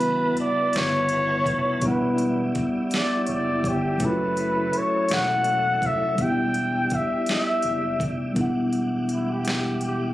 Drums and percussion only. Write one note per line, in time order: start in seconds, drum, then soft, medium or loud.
0.00 closed hi-hat medium
0.37 closed hi-hat medium
0.73 snare loud
0.73 closed hi-hat medium
1.09 closed hi-hat medium
1.46 kick medium
1.46 closed hi-hat medium
1.81 kick loud
1.81 closed hi-hat medium
2.18 closed hi-hat medium
2.55 kick loud
2.55 closed hi-hat medium
2.91 snare loud
2.91 closed hi-hat medium
3.27 closed hi-hat medium
3.64 kick loud
3.64 closed hi-hat medium
4.00 kick loud
4.00 closed hi-hat medium
4.37 closed hi-hat medium
4.73 closed hi-hat medium
5.09 snare loud
5.09 closed hi-hat medium
5.44 closed hi-hat medium
5.82 kick loud
5.82 closed hi-hat medium
6.18 kick loud
6.18 closed hi-hat medium
6.54 closed hi-hat medium
6.90 kick loud
6.90 closed hi-hat medium
7.26 snare loud
7.26 closed hi-hat medium
7.62 closed hi-hat medium
8.00 kick loud
8.00 closed hi-hat medium
8.36 kick loud
8.36 closed hi-hat medium
8.73 closed hi-hat medium
9.09 closed hi-hat soft
9.45 snare loud
9.45 closed hi-hat medium
9.81 closed hi-hat soft